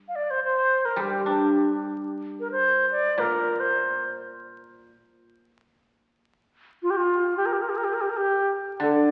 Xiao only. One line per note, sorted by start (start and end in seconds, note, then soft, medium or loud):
0.08 0.17 F5 medium
0.16 0.24 D5 medium
0.24 0.32 D5 medium
0.30 0.43 C5 medium
0.44 0.87 C5 medium
0.85 1.02 A#4 medium
1.00 1.82 G4 medium
2.40 2.51 A#4 medium
2.52 2.89 C5 medium
2.91 3.21 D5 medium
3.19 3.62 A#4 medium
3.60 4.03 C5 medium
6.83 6.92 F4 medium
6.90 6.98 G4 medium
6.97 7.37 F4 medium
7.37 7.47 G4 medium
7.46 7.54 A#4 medium
7.53 7.63 G4 medium
7.62 7.71 A#4 medium
7.69 7.78 G4 medium
7.77 7.86 A#4 medium
7.84 7.95 G4 medium
7.94 8.03 A#4 medium
8.01 8.11 G4 medium
8.10 8.18 A#4 medium
8.17 8.51 G4 medium
8.81 9.11 D5 medium